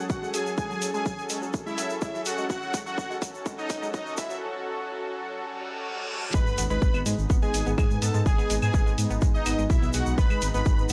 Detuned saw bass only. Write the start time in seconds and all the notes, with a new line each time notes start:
0.10 F#2
0.22 F#2
0.34 F#2
0.46 F#2
0.58 F#1
0.82 F#1
0.94 F#2
1.18 F#1
1.30 F#2
1.42 F#1
1.54 F#2
1.78 F#1
1.90 F#1
2.02 A1
2.14 A1
2.26 A1
2.38 A1
2.86 F#1
3.10 F#1
3.22 F#2
3.34 F#1
3.46 F#1
3.82 F#1
3.94 F#2
4.06 F#2
4.18 F#2
4.30 F#2
6.34 G#1
6.58 G#1
6.70 G#1
6.82 G#1
6.94 G#1
7.06 G#2
7.18 G#1
7.30 G#1
7.54 G#1
7.66 G#1
7.78 G#2
7.90 G#2
8.02 G#2
8.14 G#2
8.26 G#1
8.50 G#1
8.62 G#2
8.74 G#1
8.86 G#1
8.98 G#2
9.10 G#1
9.22 G#2
9.46 G#1
9.58 G#1
9.70 B1
9.82 B1
9.94 B1
10.06 B1
10.18 G#1
10.42 G#1
10.54 G#1
10.66 G#1
10.78 G#1